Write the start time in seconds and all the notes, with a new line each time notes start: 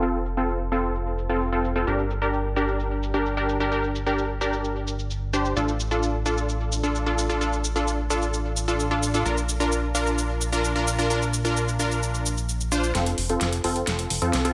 Already playing: F1
0.02 C4 F4 A4, shaker
0.14 shaker
0.26 shaker
0.37 C4 F4 A4, shaker
0.49 shaker
0.72 C4 F4 A4, shaker
0.84 shaker
0.95 shaker
1.18 shaker
1.29 C4 F4 A4, shaker
1.41 shaker
1.52 C4 F4 A4
1.64 shaker
1.76 C4 F4 A4, shaker
1.87 G1 D4 G4 A#4, shaker
1.99 shaker
2.11 shaker
2.22 D4 G4 A#4, shaker
2.34 shaker
2.56 D4 G4 A#4, shaker
2.68 shaker
2.80 shaker
3.03 shaker
3.14 D4 G4 A#4, shaker
3.26 shaker
3.37 D4 G4 A#4
3.49 shaker
3.60 D4 G4 A#4, shaker
3.72 D4 G4 A#4, shaker
3.84 shaker
3.95 shaker
4.06 D4 G4 A#4, shaker
4.18 shaker
4.41 D4 G4 A#4, shaker
4.53 shaker
4.64 shaker
4.88 shaker
4.99 shaker
5.11 shaker
5.33 D4 G4 C5, shaker
5.45 shaker
5.56 A1 D4 F4 A4, shaker
5.68 shaker
5.80 shaker
5.91 D4 F4 A4, shaker
6.03 shaker
6.26 D4 F4 A4, shaker
6.38 shaker
6.49 shaker
6.72 shaker
6.83 D4 F4 A4, shaker
6.95 shaker
7.06 D4 F4 A4
7.18 shaker
7.29 D4 F4 A4, shaker
7.41 D4 F4 A4, shaker
7.53 shaker
7.64 shaker
7.76 D4 F4 A4, shaker
7.88 shaker
8.10 D4 F4 A4, shaker
8.22 shaker
8.34 shaker
8.57 shaker
8.68 D4 F4 A4, shaker
8.80 shaker
8.91 D4 F4 A4
9.03 shaker
9.14 D4 F4 A4, shaker
9.26 A#1 D4 F4 A#4, shaker
9.37 shaker
9.49 shaker
9.60 D4 F4 A#4, shaker
9.72 shaker
9.95 D4 F4 A#4, shaker
10.07 shaker
10.18 shaker
10.41 shaker
10.52 D4 F4 A#4, shaker
10.64 shaker
10.76 D4 F4 A#4
10.87 shaker
10.98 D4 F4 A#4, shaker
11.10 D4 F4 A#4, shaker
11.22 shaker
11.34 shaker
11.45 D4 F4 A#4, shaker
11.57 shaker
11.68 shaker
11.79 D4 F4 A#4, shaker
11.91 shaker
12.03 shaker
12.14 shaker
12.26 shaker
12.38 shaker
12.49 shaker
12.61 shaker
12.72 D4 F4 C5, shaker
12.84 shaker
12.95 F1 C4 F4 A4, snare, closed hi-hat
13.06 closed hi-hat
13.18 F1, open hi-hat
13.29 C4 F4 A4, closed hi-hat
13.41 F1, snare, closed hi-hat
13.53 closed hi-hat
13.64 F1 C4 F4 A4, open hi-hat
13.76 closed hi-hat
13.87 F1, snare, closed hi-hat
13.99 closed hi-hat
14.10 F1, open hi-hat
14.22 F2 C4 F4 A4, closed hi-hat
14.33 C2, snare, closed hi-hat
14.45 C4 F4 A4, closed hi-hat